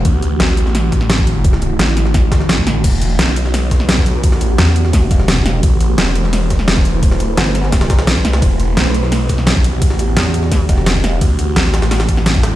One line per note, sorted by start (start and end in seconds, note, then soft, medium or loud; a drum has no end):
0.00 2.80 F#4 medium
0.05 0.21 D2 loud
0.05 2.81 D3 medium
0.05 2.81 A3 medium
0.05 2.81 E4 medium
0.05 kick loud
0.05 closed hi-hat medium
0.05 closed hi-hat loud
0.22 0.38 D2 loud
0.22 closed hi-hat medium
0.40 1.78 A1 loud
0.40 snare loud
0.40 closed hi-hat loud
0.49 closed hi-hat soft
0.57 closed hi-hat medium
0.66 snare soft
0.75 snare soft
0.75 closed hi-hat medium
0.75 closed hi-hat loud
0.92 kick medium
0.92 snare soft
0.92 closed hi-hat medium
1.01 snare soft
1.10 snare loud
1.10 closed hi-hat medium
1.10 closed hi-hat loud
1.18 kick loud
1.27 closed hi-hat medium
1.27 open hi-hat medium
1.44 kick loud
1.44 closed hi-hat medium
1.44 closed hi-hat loud
1.53 snare medium
1.62 closed hi-hat medium
1.79 2.83 A1 loud
1.79 snare loud
1.79 closed hi-hat medium
1.79 closed hi-hat loud
1.88 closed hi-hat soft
1.97 snare soft
1.97 closed hi-hat medium
2.06 snare soft
2.14 kick loud
2.14 snare soft
2.14 closed hi-hat medium
2.14 closed hi-hat loud
2.32 kick loud
2.32 snare loud
2.32 closed hi-hat medium
2.40 snare soft
2.49 snare loud
2.49 closed hi-hat medium
2.49 closed hi-hat loud
2.58 kick medium
2.58 snare soft
2.58 closed hi-hat soft
2.67 snare medium
2.67 closed hi-hat medium
2.84 3.00 E1 loud
2.84 5.60 E3 medium
2.84 5.60 B3 medium
2.84 5.60 F#4 medium
2.84 5.60 G4 medium
2.84 kick loud
2.84 closed hi-hat medium
2.84 closed hi-hat loud
2.84 crash medium
2.84 ride medium
3.01 3.18 E1 medium
3.01 closed hi-hat medium
3.01 ride medium
3.19 4.16 B1 loud
3.19 snare loud
3.19 closed hi-hat medium
3.19 closed hi-hat loud
3.19 ride medium
3.28 closed hi-hat soft
3.36 closed hi-hat medium
3.36 ride medium
3.45 snare soft
3.54 snare soft
3.54 closed hi-hat medium
3.54 closed hi-hat loud
3.54 ride medium
3.71 kick medium
3.71 snare soft
3.71 closed hi-hat medium
3.71 ride medium
3.80 snare soft
3.89 snare loud
3.89 closed hi-hat medium
3.89 closed hi-hat loud
3.89 ride medium
3.97 kick loud
4.06 closed hi-hat medium
4.06 open hi-hat medium
4.06 ride medium
4.16 4.44 A#1 loud
4.24 kick loud
4.24 closed hi-hat medium
4.24 closed hi-hat loud
4.24 ride medium
4.32 snare medium
4.41 4.57 A1 loud
4.41 closed hi-hat medium
4.41 ride medium
4.58 5.09 E2 loud
4.58 snare loud
4.58 closed hi-hat loud
4.58 closed hi-hat medium
4.58 ride medium
4.67 closed hi-hat soft
4.76 closed hi-hat medium
4.76 ride soft
4.85 snare soft
4.93 kick loud
4.93 snare soft
4.93 closed hi-hat medium
4.93 closed hi-hat loud
4.93 ride medium
5.11 5.62 E1 loud
5.11 kick loud
5.11 snare soft
5.11 closed hi-hat medium
5.11 ride medium
5.20 snare soft
5.28 snare loud
5.28 closed hi-hat medium
5.28 closed hi-hat loud
5.28 ride medium
5.37 kick medium
5.37 closed hi-hat soft
5.46 snare medium
5.46 closed hi-hat medium
5.46 ride medium
5.63 5.79 A1 loud
5.63 8.39 A3 medium
5.63 8.39 E4 medium
5.63 8.39 B4 medium
5.63 8.39 C5 medium
5.63 kick loud
5.63 closed hi-hat medium
5.63 ride medium
5.80 5.97 A1 medium
5.80 closed hi-hat medium
5.80 ride medium
5.98 6.95 E1 loud
5.98 snare loud
5.98 closed hi-hat medium
5.98 closed hi-hat loud
5.98 ride medium
6.07 closed hi-hat soft
6.15 closed hi-hat medium
6.15 ride soft
6.24 snare soft
6.33 snare soft
6.33 closed hi-hat medium
6.33 ride medium
6.50 kick medium
6.50 snare soft
6.50 closed hi-hat medium
6.50 ride medium
6.59 snare soft
6.68 snare loud
6.68 closed hi-hat medium
6.68 ride medium
6.77 kick loud
6.85 closed hi-hat medium
6.85 open hi-hat medium
6.85 ride soft
6.95 7.23 D#1 loud
7.03 kick loud
7.03 closed hi-hat medium
7.03 ride medium
7.11 snare medium
7.20 7.36 D1 loud
7.20 closed hi-hat medium
7.20 ride soft
7.37 7.89 G1 loud
7.37 snare loud
7.37 closed hi-hat medium
7.37 ride medium
7.46 closed hi-hat soft
7.55 snare soft
7.55 closed hi-hat medium
7.55 ride soft
7.64 snare soft
7.72 kick loud
7.72 snare loud
7.72 snare soft
7.72 closed hi-hat medium
7.72 ride medium
7.81 snare loud
7.81 closed hi-hat medium
7.90 8.23 B1 loud
7.90 kick loud
7.90 snare loud
7.90 closed hi-hat medium
7.90 ride medium
7.99 snare loud
7.99 closed hi-hat medium
8.07 snare loud
8.07 closed hi-hat medium
8.07 ride medium
8.16 kick medium
8.16 closed hi-hat soft
8.25 8.41 C2 loud
8.25 snare medium
8.25 closed hi-hat medium
8.25 ride medium
8.33 snare loud
8.33 closed hi-hat medium
8.42 8.58 E1 loud
8.42 11.18 E3 medium
8.42 11.18 B3 medium
8.42 11.18 F#4 medium
8.42 11.18 G4 medium
8.42 kick loud
8.42 closed hi-hat medium
8.42 ride medium
8.60 8.76 E1 loud
8.60 closed hi-hat medium
8.60 ride medium
8.77 9.74 B1 loud
8.77 snare loud
8.77 closed hi-hat medium
8.77 ride medium
8.86 closed hi-hat soft
8.94 closed hi-hat medium
8.94 ride medium
9.03 snare soft
9.12 snare soft
9.12 closed hi-hat medium
9.12 ride medium
9.29 kick medium
9.29 snare soft
9.29 closed hi-hat medium
9.29 ride medium
9.38 snare soft
9.47 snare loud
9.47 closed hi-hat medium
9.47 ride medium
9.56 kick loud
9.64 closed hi-hat medium
9.64 open hi-hat medium
9.64 ride medium
9.74 10.02 A#1 loud
9.82 kick loud
9.82 closed hi-hat medium
9.82 closed hi-hat loud
9.82 ride medium
9.90 snare medium
9.99 10.15 A1 loud
9.99 closed hi-hat medium
9.99 ride medium
10.17 10.68 E2 loud
10.17 snare loud
10.17 closed hi-hat medium
10.17 ride medium
10.25 closed hi-hat soft
10.34 closed hi-hat medium
10.34 ride medium
10.43 snare soft
10.51 kick loud
10.51 snare soft
10.51 closed hi-hat medium
10.51 closed hi-hat loud
10.51 ride medium
10.69 11.20 E1 loud
10.69 kick loud
10.69 snare soft
10.69 closed hi-hat medium
10.69 ride medium
10.78 snare soft
10.86 snare loud
10.86 closed hi-hat medium
10.86 closed hi-hat loud
10.86 ride medium
10.95 kick medium
10.95 closed hi-hat soft
11.04 snare medium
11.04 closed hi-hat medium
11.04 ride medium
11.21 11.37 D2 loud
11.21 12.56 D3 medium
11.21 12.56 A3 medium
11.21 12.56 E4 medium
11.21 12.56 F#4 medium
11.21 kick loud
11.21 closed hi-hat medium
11.21 ride medium
11.39 11.55 D2 loud
11.39 closed hi-hat medium
11.39 ride medium
11.56 12.56 A1 loud
11.56 snare loud
11.56 closed hi-hat medium
11.56 closed hi-hat loud
11.56 ride medium
11.65 closed hi-hat soft
11.74 snare loud
11.74 closed hi-hat medium
11.74 ride medium
11.82 snare loud
11.82 closed hi-hat medium
11.91 snare loud
11.91 snare soft
11.91 closed hi-hat medium
11.91 closed hi-hat loud
11.91 ride medium
12.00 snare loud
12.00 closed hi-hat medium
12.09 kick medium
12.09 closed hi-hat medium
12.09 ride medium
12.17 snare soft
12.26 snare soft
12.26 snare loud
12.26 closed hi-hat medium
12.26 closed hi-hat loud
12.26 ride medium
12.35 kick loud
12.43 snare loud
12.43 closed hi-hat medium
12.43 ride medium